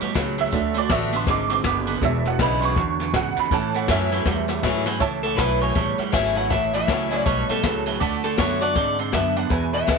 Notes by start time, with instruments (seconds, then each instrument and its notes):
Already playing: steel-string acoustic guitar B2, honky-tonk piano C#5
0.01 clean electric guitar A2 G3, muted upright bass stroke, snare
0.15 upright bass C#2, clean electric guitar A2 F#3, steel-string acoustic guitar C#3, kick, snare, hi-hat pedal
0.38 clean electric guitar A2 F#3, honky-tonk piano E5, snare
0.46 snare
0.52 upright bass D2, clean electric guitar D3 A3, steel-string acoustic guitar D3, honky-tonk piano F#3 A3 D4, kick, snare
0.74 clean electric guitar D3 A3, honky-tonk piano D5, snare
0.89 upright bass A1, steel-string acoustic guitar D3 A3 D4 F#4, clean electric guitar D3 B3, honky-tonk piano E5, kick, snare, hi-hat pedal
1.13 clean electric guitar D3 B3, steel-string acoustic guitar D4 F#4, honky-tonk piano C6, snare
1.20 snare
1.27 upright bass G#1, steel-string acoustic guitar G#2, clean electric guitar D3 C4, honky-tonk piano D6, kick, snare
1.49 clean electric guitar D3 C4, honky-tonk piano C#6, snare
1.53 honky-tonk piano D6
1.64 upright bass F#1, steel-string acoustic guitar F#2, clean electric guitar D3 B3, kick, snare, hi-hat pedal
1.87 clean electric guitar D3 B3, snare
1.94 snare
2.01 upright bass E1, clean electric guitar E2 B2, steel-string acoustic guitar E2, honky-tonk piano F#3 G#3 D4 E5, kick, snare
2.25 clean electric guitar E2 B2, honky-tonk piano F#5, snare
2.39 upright bass B1, clean electric guitar E2 C#3, steel-string acoustic guitar D3 G#3 B3 E4, honky-tonk piano B5, kick, snare, hi-hat pedal
2.60 clean electric guitar E2 C#3, steel-string acoustic guitar E4, honky-tonk piano C6, snare
2.65 steel-string acoustic guitar B3, honky-tonk piano C#6
2.69 snare
2.76 upright bass E2, clean electric guitar E2 D3, steel-string acoustic guitar F#2, kick, snare
3.00 clean electric guitar E2 D3, snare
3.14 clean electric guitar E2 C#3, upright bass G#2, steel-string acoustic guitar G#2, honky-tonk piano F#5, kick, snare, hi-hat pedal
3.37 clean electric guitar E2 C#3, honky-tonk piano B5, muted upright bass stroke, snare
3.44 snare
3.51 upright bass A2, clean electric guitar A2 E3, steel-string acoustic guitar A2, honky-tonk piano E3 C#4 A4 A5, kick, snare
3.74 clean electric guitar A2 E3, honky-tonk piano F#5, snare
3.88 upright bass F#2, clean electric guitar A2 F#3, steel-string acoustic guitar E3 A3 C#4 E4, honky-tonk piano E5, kick, snare, hi-hat pedal
4.11 clean electric guitar A2 F#3, steel-string acoustic guitar C#4 E4, snare
4.18 snare
4.26 upright bass E2, steel-string acoustic guitar E2, clean electric guitar A2 G3, kick, snare
4.48 clean electric guitar A2 G3, snare
4.63 upright bass G#2, clean electric guitar A2 F#3, steel-string acoustic guitar E3 A3 C#4 E4, kick, snare, hi-hat pedal
4.86 clean electric guitar A2 F#3, steel-string acoustic guitar C#4 E4, snare
5.00 upright bass C#2, steel-string acoustic guitar A2, clean electric guitar A2 E3, honky-tonk piano C#5 E5 A5, kick, snare
5.23 clean electric guitar A2 E3 A4, honky-tonk piano C#5 E5 F#5, snare
5.36 upright bass B1, clean electric guitar A2 F#3 B4, steel-string acoustic guitar E3 A3 C#4 E4, honky-tonk piano C#5 E5 A5, kick, snare, hi-hat pedal
5.60 clean electric guitar A2 F#3 C#5, steel-string acoustic guitar C#4 E4, honky-tonk piano C#5 E5 G#5, snare
5.69 snare
5.75 upright bass A1, steel-string acoustic guitar E2, clean electric guitar A2 G3, honky-tonk piano C#5 E5 A5, kick, snare
5.98 clean electric guitar A2 G3, honky-tonk piano C#5 E5 F#5, muted upright bass stroke, snare
6.12 upright bass G#1, clean electric guitar A2 F#3 E5, steel-string acoustic guitar E3 A3 C#4 E4, honky-tonk piano C#5 E5 G#5, kick, snare, hi-hat pedal
6.35 clean electric guitar A2 F#3 F#5, steel-string acoustic guitar C#4 E4, honky-tonk piano C#5 E5 A5, snare
6.44 snare
6.49 upright bass A1, clean electric guitar A2 E3 E5, steel-string acoustic guitar A2, honky-tonk piano C#5 E5 A5, kick, snare
6.72 clean electric guitar A2 E3 E5, honky-tonk piano C#5 E5 A5, snare
6.87 upright bass C#2, clean electric guitar A2 F#3, steel-string acoustic guitar E3 A3 C#4 E4, honky-tonk piano C#5 E5 A5, kick, snare, hi-hat pedal
7.10 clean electric guitar A2 F#3, steel-string acoustic guitar C#4 E4, honky-tonk piano C#5 E5 G#5, snare
7.19 snare
7.24 upright bass B1, clean electric guitar A2 G3 C#5, steel-string acoustic guitar B2, honky-tonk piano C#5 E5 A5, kick, snare
7.47 clean electric guitar A2 G3 A4, honky-tonk piano C#5 E5 A5, muted upright bass stroke, snare
7.62 upright bass C#2, clean electric guitar A2 F#3, steel-string acoustic guitar C#3, honky-tonk piano C#5 E5 A5, kick, snare, hi-hat pedal
7.86 clean electric guitar A2 F#3, honky-tonk piano C#5 E5 A5, snare
7.94 snare
8.00 upright bass D2, steel-string acoustic guitar D3, clean electric guitar D3 A3, honky-tonk piano D5 F#5 A5, kick, snare
8.24 clean electric guitar D3 A3 A4, honky-tonk piano D5 F#5 A5, snare
8.37 upright bass F#2, steel-string acoustic guitar D3 A3 D4 F#4, clean electric guitar D3 B3 C#5, honky-tonk piano D5 F#5 A5, kick, snare, hi-hat pedal
8.60 clean electric guitar D3 B3 D5, steel-string acoustic guitar D4 F#4, honky-tonk piano D5 F#5 A5, snare
8.75 steel-string acoustic guitar G#2, upright bass G#2, clean electric guitar D3 C4, honky-tonk piano D5 F#5 A5, kick, snare
8.99 clean electric guitar D3 C4, honky-tonk piano D5 F#5 A5, snare
9.12 steel-string acoustic guitar F#2, upright bass F#2, clean electric guitar D3 B3 E5, honky-tonk piano D5 F#5 A5, kick, snare, hi-hat pedal
9.36 clean electric guitar D3 B3 F#5, honky-tonk piano D5 F#5 A5, snare
9.50 steel-string acoustic guitar E2, upright bass E2, clean electric guitar E2 B2 E5, honky-tonk piano B4 E5 G#5, kick, snare
9.73 clean electric guitar E2 B2 E5, honky-tonk piano B4 E5 G#5, snare
9.87 upright bass D2, clean electric guitar E2 C#3, steel-string acoustic guitar D3 G#3 B3 E4, honky-tonk piano B4 E5 G#5, kick, snare, hi-hat pedal